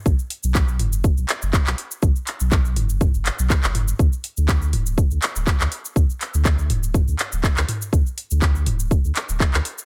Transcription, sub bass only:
X:1
M:4/4
L:1/16
Q:"Swing 16ths" 1/4=122
K:D
V:1 name="Sub bass" clef=bass
B,,, z2 B,,,3 F,,,2 z B,,, z F,,, z B,,, z2 | B,,, z2 B,,,3 F,,,2 z F,,, z B,,, z F,,,2 z | D,, z2 D,,3 D,,,2 z D,, z D,,, z D,, z2 | D,, z2 D,,3 D,,,2 z D,, z D,,, z D,, z2 |
D,, z2 D,,3 D,,,2 z D,, z D,,, z D,, z2 |]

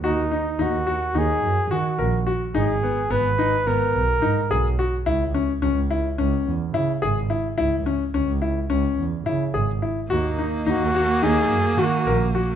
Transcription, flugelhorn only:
X:1
M:9/8
L:1/8
Q:3/8=71
K:D#phr
V:1 name="Flugelhorn"
D2 F2 G2 F2 z | G2 B2 A4 z | z8 z | z8 z |
D2 F2 G2 F2 z |]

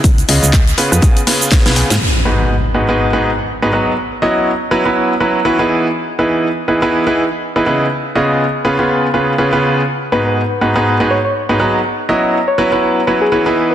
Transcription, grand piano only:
X:1
M:4/4
L:1/16
Q:"Swing 16ths" 1/4=122
K:G#m
V:1 name="Grand piano"
z2 [C,B,C^EGd]2 z2 [C,B,CEGB] [C,B,CEGB]2 z [C,B,CEGB] z [CEGB] [C,B,CEGB]2 z | z2 [G,,B,DFGB]2 z2 [G,,B,DFGB] [G,,B,DFGB]2 [G,,B,DFGB] z3 [G,,B,DFGB] [F,B,DFGB] z | z2 [F,B,CEFd]2 z2 [F,B,CEFB] [F,B,CEFB]2 z [F,B,CEFB] z [E,B,CEFB] [E,B,DEGB]2 z | z2 [E,B,DEGB]2 z2 [E,B,DEGB] [E,B,DEGB]2 [E,B,DEGB] z3 [E,B,DEGB] [C,B,DEGB] z |
z2 [C,B,C^EGd]2 z2 [C,B,CEGB] [C,B,CEGB]2 z [C,B,CEGB] z [C,B,CEGB] [C,B,CEGB]2 z | z2 [G,,B,DFGB]2 z2 [G,,B,DFGB] [G,,B,DFGB]2 [G,,B,DFGB] z3 [G,,B,DFGB] [F,B,DFGB] z | z2 [F,B,CEFd]2 z2 [F,B,CEFB] [F,B,CEFB]2 z [F,B,CEFB] z [E,B,CEFB] [E,B,DEGB]2 z |]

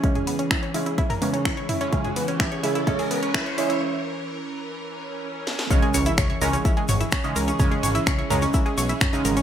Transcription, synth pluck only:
X:1
M:4/4
L:1/16
Q:1/4=127
K:C#dor
V:1 name="Synth pluck"
C G B, C E c E E E A B, C E c E C | C G B, C E c E E C G B, C E c E E | z16 | [Cc] [G,G] [cc'] [Ee] [Cc] [cc'] [Aa] [Cc] [Ee] [G,G] [cc'] [Ee] [Cc] [Dd] [Aa] [Cc] |
[Cc] [G,G] [cc'] [Ee] [Cc] [cc'] [Aa] [Cc] [Ee] [G,G] [cc'] [Ee] [Cc] [Dd] [Aa] [Cc] |]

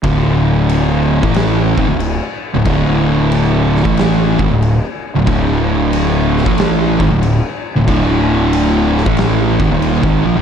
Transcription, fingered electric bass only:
X:1
M:4/4
L:1/16
Q:"Swing" 1/4=92
K:Cmix
V:1 name="Fingered electric bass" clef=bass
D,,,6- D,,, A,,,3 ^G,,, D,,,2 z2 D,,, | D,,,6- D,,, A,,,3 ^G,,, D,,,2 z2 D,,, | D,,,6- D,,, A,,,3 ^G,,, D,,,2 z2 D,,, | D,,,6- D,,, A,,,3 ^G,,, _E,,,2 G,,, B,,, D,,, |]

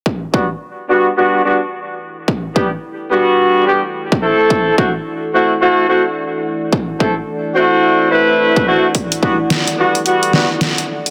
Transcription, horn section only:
X:1
M:4/4
L:1/8
Q:"Swing 16ths" 1/4=108
K:Em
V:1 name="Horn section"
z [G,B,DF] z [G,B,DF] [G,B,DF] [G,B,DF] z2 | z [G,B,DG] z [G,B,DF]2 [G,B,DG] z [A,CEA]- | [A,CEA] [A,CEF] z [A,CEF] [A,CEF] [A,CEF] z2 | z [A,CEA] z [A,CEF]2 [A,CEB]2 [A,CEF] |
z [G,B,DF] z [G,B,DF] [G,B,DF] [G,B,DF] z2 |]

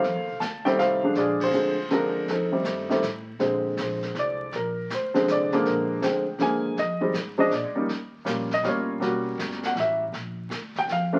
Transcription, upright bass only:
X:1
M:3/4
L:1/8
Q:"Swing" 1/4=160
K:Bbmix
V:1 name="Upright bass" clef=bass
(3F,, E,, C,, D,,2 C,,2 | B,,,2 D,,2 E,,2 | F,,2 G,,2 =A,,2 | B,,2 B,,,2 C,,2 |
B,,,2 D,,2 C,,2 | B,,,2 D,,2 E,,2 | F,,2 A,,2 (3B,, A,, F,, | E,,2 B,,,2 G,,,2 |
=E,,,2 G,,,2 =A,,,2 | B,,,2 D,,2 F,,2 |]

